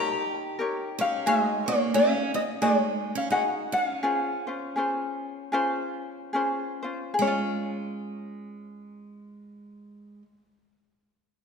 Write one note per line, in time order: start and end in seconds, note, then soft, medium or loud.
0.00 0.60 D#4 medium
0.00 0.59 G4 medium
0.00 0.95 G4 loud
0.00 0.58 A#4 medium
0.00 0.61 C#5 medium
0.00 1.01 A#5 loud
0.59 0.99 D#4 medium
0.59 0.99 G4 medium
0.59 0.99 A#4 medium
0.59 0.98 C#5 medium
0.99 1.24 C#4 medium
0.99 1.26 D#4 soft
0.99 1.26 G4 medium
0.99 1.27 C#5 soft
0.99 1.28 F5 loud
1.26 1.63 G#3 medium
1.26 1.66 D#4 medium
1.26 1.66 F#4 medium
1.26 1.66 G#4 medium
1.26 1.65 C#5 loud
1.26 1.68 D#5 medium
1.66 1.92 A#3 medium
1.66 1.93 D#4 medium
1.66 1.93 F#4 soft
1.66 1.93 C#5 medium
1.66 1.95 C#5 medium
1.94 2.31 C#4 medium
1.94 2.61 D#4 medium
1.94 2.61 F#4 medium
1.94 2.61 G#4 medium
1.94 2.35 F5 medium
2.34 2.42 C4 medium
2.34 2.42 D#5 medium
2.62 3.12 G#3 medium
2.62 3.31 D#4 medium
2.62 3.31 F#4 medium
2.62 3.31 G#4 medium
2.62 3.33 C#5 medium
2.62 2.79 D5 medium
2.79 3.18 C#5 medium
3.15 3.29 C#4 medium
3.15 3.31 F5 medium
3.30 3.42 D#4 medium
3.30 4.02 D#4 medium
3.30 4.02 F#4 medium
3.30 4.02 G#4 medium
3.30 4.04 C#5 medium
3.30 3.43 F#5 loud
3.72 3.83 D4 medium
3.72 3.84 F#5 medium
3.83 6.29 C#4 medium
3.83 6.30 F5 medium
4.03 4.45 C#4 medium
4.03 4.46 F4 medium
4.03 4.45 G#4 medium
4.03 4.46 C5 medium
4.47 4.75 C#4 soft
4.47 4.76 F4 medium
4.47 4.76 C5 medium
4.76 5.53 C#4 medium
4.76 5.53 F4 medium
4.76 5.52 G#4 medium
4.76 5.54 C5 medium
5.52 6.34 C#4 medium
5.52 6.34 F4 medium
5.52 6.33 G#4 medium
5.52 6.35 C5 medium
6.33 6.84 C#4 medium
6.33 6.83 F4 medium
6.33 6.83 G#4 medium
6.33 6.81 C5 medium
6.83 7.20 C#4 soft
6.83 7.19 F4 medium
6.83 7.19 C5 medium
7.14 10.64 G#4 medium
7.19 10.22 G#3 medium
7.19 10.72 C#4 medium
7.19 10.25 C#5 medium
7.27 10.77 F4 loud